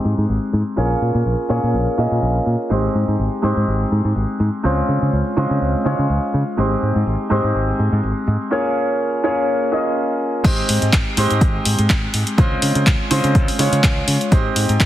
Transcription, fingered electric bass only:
0.05 0.13 G#2 medium
0.18 0.25 G#2 medium
0.29 0.37 G#1 loud
0.53 0.62 G#2 medium
0.78 0.94 A#1 medium
1.02 1.10 A#2 medium
1.15 1.22 A#2 medium
1.26 1.34 A#1 medium
1.50 1.58 A#2 medium
1.63 1.75 A#2 medium
1.74 1.86 A#1 medium
1.87 muted fingered electric bass stroke soft
1.98 2.07 A#2 medium
2.11 2.18 A#2 medium
2.22 2.39 A#1 medium
2.46 2.55 A#2 medium
2.71 2.87 G#1 medium
2.95 3.03 G#2 medium
3.08 3.15 G#2 medium
3.19 3.28 G#1 medium
3.44 3.52 G#2 medium
3.57 3.64 G#2 medium
3.68 3.84 G#1 medium
3.92 4.00 G#2 medium
4.05 4.12 G#2 medium
4.16 4.24 G#1 loud
4.40 4.48 G#2 medium
4.64 4.81 C#2 medium
4.89 4.97 C#3 medium
5.02 5.09 C#3 medium
5.13 5.21 C#2 medium
5.37 5.45 C#3 medium
5.50 5.57 C#3 medium
5.61 5.74 C#2 medium
5.74 muted fingered electric bass stroke soft
5.85 5.94 C#3 medium
5.99 6.06 C#3 loud
6.09 6.18 C#2 loud
6.34 6.42 C#3 medium
6.58 6.74 G#1 medium
6.82 6.91 G#2 medium
6.96 7.02 G#2 medium
7.07 7.15 G#1 medium
7.31 7.39 G#2 medium
7.44 7.51 G#2 medium
7.55 7.71 G#1 medium
7.79 7.87 G#2 medium
7.92 7.99 G#2 medium
8.03 8.12 G#1 loud
8.28 8.36 G#2 medium
10.45 10.61 G#1 loud
10.69 10.78 G#2 medium
10.82 10.89 G#2 medium
10.93 11.02 G#1 loud
11.17 11.26 G#2 medium
11.31 11.43 G#2 medium
11.41 11.58 G#1 medium
11.66 11.74 G#2 medium
11.79 11.86 G#2 medium
11.90 12.06 G#1 loud
12.14 12.23 G#2 medium
12.38 12.55 C#2 loud
12.62 12.71 C#3 medium
12.75 12.83 C#3 medium
12.87 12.95 C#2 loud
13.11 13.19 C#3 medium
13.24 13.37 C#3 medium
13.35 13.48 C#2 loud
13.48 muted fingered electric bass stroke soft
13.59 13.68 C#3 medium
13.72 13.79 C#3 medium
13.84 14.00 C#2 loud
14.08 14.16 C#3 medium
14.32 14.48 G#1 loud
14.56 14.64 G#2 medium
14.69 14.76 G#2 medium
14.80 14.86 G#1 loud

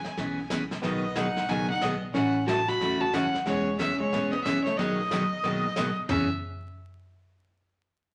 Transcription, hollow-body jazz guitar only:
0.00 0.50 E4 medium
0.82 1.16 B3 medium
1.16 1.48 D#4 medium
1.49 1.69 D#4 medium
1.71 1.82 D#4 medium
1.82 2.02 B3 medium
2.14 2.45 C#4 medium
2.47 2.66 F#4 medium
2.68 3.00 F#4 medium
3.01 3.14 F#4 medium
3.14 3.35 C#4 medium
3.46 3.77 G#3 medium
3.79 3.98 C#4 medium
4.00 4.33 G#3 medium
4.33 4.45 B3 medium
4.45 4.65 C#4 medium
4.67 4.79 A3 medium
4.79 5.98 B3 medium
6.09 6.29 C#4 medium

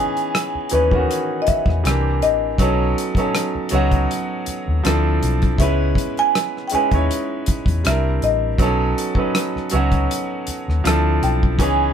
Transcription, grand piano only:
0.00 0.55 E3 medium
0.00 0.55 B3 medium
0.00 0.56 C#4 medium
0.00 0.56 D#4 medium
0.00 0.56 G#4 loud
0.71 0.88 E3 medium
0.71 0.89 B3 medium
0.71 0.89 C#4 medium
0.71 0.89 D#4 medium
0.71 0.90 B4 medium
0.91 1.85 D#3 medium
0.91 1.82 E3 medium
0.91 1.84 B3 medium
0.91 1.84 C#4 medium
0.91 1.86 F#4 medium
1.84 2.48 E3 medium
1.84 2.48 A#3 medium
1.84 2.48 C4 medium
1.84 2.49 D4 medium
1.84 2.49 G4 medium
2.59 3.07 F#3 medium
2.59 3.07 B3 medium
2.59 3.08 C#4 medium
2.59 3.08 D#4 medium
2.59 3.08 A4 medium
3.16 3.63 F#3 medium
3.16 3.63 B3 medium
3.16 3.64 C#4 medium
3.16 3.64 D#4 medium
3.16 3.65 A4 medium
3.71 4.84 F#3 medium
3.71 4.84 B3 medium
3.71 4.85 C#4 medium
3.71 4.85 D#4 medium
3.71 4.85 F#4 medium
4.83 5.47 F3 medium
4.83 5.48 C4 medium
4.83 5.48 D4 medium
4.83 5.49 E4 medium
4.83 5.49 A4 medium
5.59 6.55 G#3 medium
5.59 6.55 B3 medium
5.59 6.55 C#4 medium
5.59 6.56 E4 medium
5.59 6.56 B4 medium
6.71 6.88 G#3 medium
6.71 6.89 C#4 medium
6.71 6.89 D#4 medium
6.71 6.90 E4 medium
6.71 6.90 B4 medium
6.91 7.84 G#3 medium
6.91 7.84 C#4 medium
6.91 7.85 D#4 medium
6.91 7.85 E4 medium
6.91 7.85 C#5 medium
7.84 8.48 G3 medium
7.84 8.48 C4 medium
7.84 8.49 D4 medium
7.84 8.49 E4 medium
7.84 8.49 A#4 medium
8.58 9.06 F#3 medium
8.58 9.07 B3 medium
8.58 9.07 C#4 medium
8.58 9.08 D#4 medium
8.62 9.09 A4 medium
9.16 9.62 F#3 medium
9.16 9.63 B3 medium
9.16 9.63 C#4 medium
9.16 9.64 D#4 medium
9.16 9.64 B4 medium
9.71 10.84 F#3 medium
9.71 10.84 B3 medium
9.71 10.85 C#4 medium
9.71 10.85 D#4 medium
9.71 10.86 F#4 medium
10.84 11.48 F3 medium
10.84 11.48 C4 medium
10.84 11.49 D4 medium
10.84 11.49 E4 medium
10.84 11.49 A4 medium
11.59 11.93 E3 medium
11.59 11.93 B3 medium
11.59 11.93 C#4 medium
11.59 11.93 D#4 medium
11.59 11.93 G#4 medium

